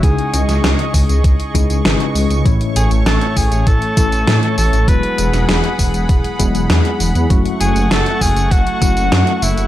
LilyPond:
<<
  \new Staff \with { instrumentName = "Analog synth pad" } { \time 4/4 \key fis \dorian \tempo 4 = 99 << { cis'''1~ | cis'''1 | <fis'' b''>1 | <fis'' cis'''>1 | } \\ { <gis' dis''>1 | <a cis''>1 | gis'1 | a1 | } >> }
  \new Staff \with { instrumentName = "Tenor saxophone" } { \time 4/4 \key fis \dorian gis'4 r2. | r8 gis'8 a'8 gis'8 a'4. a'8 | b'4 r2. | r8 gis'8 a'8 gis'8 fis'4. e'8 | }
  \new Staff \with { instrumentName = "Tine electric piano" } { \time 4/4 \key fis \dorian <cis gis cis' dis' e' gis'>2~ <cis gis cis' dis' e' gis'>8 <cis gis cis' dis' e' gis'>8 <cis gis cis' dis' e' b'>4 | <a, e a cis' e' cis''>2~ <a, e a cis' e' cis''>8 <a, e a cis' e' a'>4. | <fis gis b e' fis'>2~ <fis gis b e' fis'>8 <fis gis b e' gis'>4. | <fis a cis' e' fis'>2~ <fis a cis' e' fis'>8 <fis a cis' e' fis'>4. | }
  \new Staff \with { instrumentName = "Detuned saw bass" } { \clef bass \time 4/4 \key fis \dorian cis,16 r16 cis,16 cis,16 cis,16 r16 cis,16 cis,16 cis,16 r16 cis,16 cis,16 gis,,16 r16 cis,16 cis,16 | a,,16 r16 a,,16 a,,16 a,,16 r16 a,,16 a,,16 a,,16 r16 a,,16 a,,16 a,16 r16 a,,16 a,,16 | e,,16 r16 e,,16 e,,16 e,,16 r16 e,,16 e,,16 e,,16 r16 e,,16 e,,16 e,16 r16 e,,16 e,16 | fis,,16 r16 fis,,16 fis,,16 fis,,16 r16 fis,,16 fis,,16 fis,,16 r16 fis,,16 fis,,16 fis,16 r16 fis,,16 fis,,16 | }
  \new DrumStaff \with { instrumentName = "Drums" } \drummode { \time 4/4 <hh bd tamb>16 hh16 <hh tamb>16 <hh sn tamb>16 <hh sn tamb>16 hh16 <hho bd tamb>16 <hh tamb>16 <hh bd tamb>16 hh16 <hh bd tamb>16 <hh tamb>16 <hh sn tamb>16 hh16 <hho tamb>16 <hh tamb>16 | <hh bd tamb>16 hh16 <hh tamb>16 <hh tamb>16 <hh sn tamb>16 hh16 <hho bd tamb>16 <hh tamb>16 <hh bd tamb>16 hh16 <hh bd tamb>16 <hh tamb>16 <hh sn tamb>16 hh16 <hho tamb>16 <hh tamb>16 | <hh bd tamb>16 hh16 <hh tamb>16 <hh sn tamb>16 <hh sn tamb>16 hh16 <hho bd tamb>16 <hh tamb>16 <hh bd tamb>16 hh16 <hh bd tamb>16 <hh tamb>16 <hh sn tamb>16 hh16 <hho tamb>16 <hh tamb>16 | <hh bd tamb>16 hh16 <hh tamb>16 <hh tamb>16 <hh sn tamb>16 hh16 <hho bd tamb>16 <hh tamb>16 <hh bd tamb>16 hh16 <hh bd tamb>16 <hh tamb>16 <hh sn tamb>16 hh16 <hho tamb>16 <hh tamb>16 | }
>>